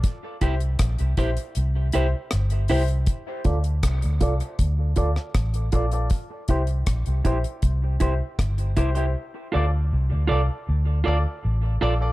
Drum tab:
HH |x-xxxxxxx-x-xxox|x-xxxxxxx-x-xxxx|x-xxxxxxx-x-xxxx|----------------|
SD |----r-------r---|----r------rr---|----r-------r---|----------------|
BD |o-o-o-o---------|o-o-o-o-o-o-o-o-|o-o-o-o-o-o-o-o-|----------------|